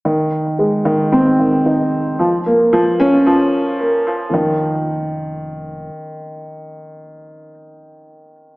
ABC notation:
X:1
M:4/4
L:1/8
Q:1/4=112
K:Ebmix
V:1 name="Upright piano" clef=bass
E, z A, E, C E, E z | F, B, F, D F, z B, F, | E, z6 z | z8 |]
V:2 name="Analog synth bass" clef=bass
F,,,8 | F,,,8 | F,,,6 z2 | z8 |]